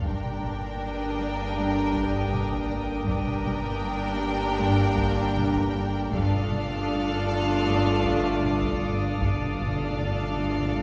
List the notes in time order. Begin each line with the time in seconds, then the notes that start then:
0.05 G1 G2 D3 A#3 D4 G4 A#4 G5 D6, taiko
0.25 taiko mid
0.43 G3, taiko mid
0.81 G2 D#6
1.19 G3
1.57 G2
1.94 G2, taiko
2.32 G2, taiko mid
2.52 taiko
2.71 G2
3.08 G1 G2 D3 A#3 D4 G4 A#4 G5, taiko
3.27 taiko mid
3.46 G3, taiko mid
3.85 G2
4.22 G3
4.61 G2
4.98 G2, taiko
5.36 G2, taiko mid
5.56 taiko
5.74 G2
6.12 G1 G2 D3 A3 D4 F4 A4 F5 D6 D#6, taiko
6.33 G2, taiko mid
6.51 G3, taiko mid
6.65 G2
6.72 G2
6.79 G2
6.87 G2
6.95 G2
7.02 G2
7.09 G2
7.16 G2
7.24 G2 G3
7.40 G2
7.47 G2
7.54 G2
7.66 G2 A6
7.78 G2
7.84 G2
8.04 G2, taiko
8.15 G2
8.23 G2
8.30 G2
8.38 G2
8.42 G2, taiko mid
8.53 G2
8.60 G2, taiko
8.68 G2
8.76 G2
8.82 G2
8.91 G2
9.06 G2
9.14 G2
9.21 G1 G2 D3 A3 D4 F4 A4 F5, taiko
9.29 G2
9.37 G2
9.42 G2, taiko mid
9.53 G2
9.59 G2 G3, taiko mid
9.68 G2
9.75 G2
9.83 G2
9.91 G2
9.98 G2
10.06 G2
10.14 G2
10.21 G2
10.29 G2
10.36 G2
10.41 G2 G3
10.52 G2
10.60 G2
10.68 G2
10.76 G2